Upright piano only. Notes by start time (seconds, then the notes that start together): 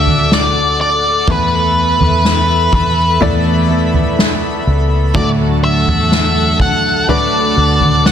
Already playing: A3 D4 F#4 A4 D5
1.28 E3 A3 B3 E4 A4 B4
3.21 A3 B3 E4 A4 D5
5.14 A2 F#3 A3 D4 F#4 A4
7.08 F#3 A3 D4 F#4 B4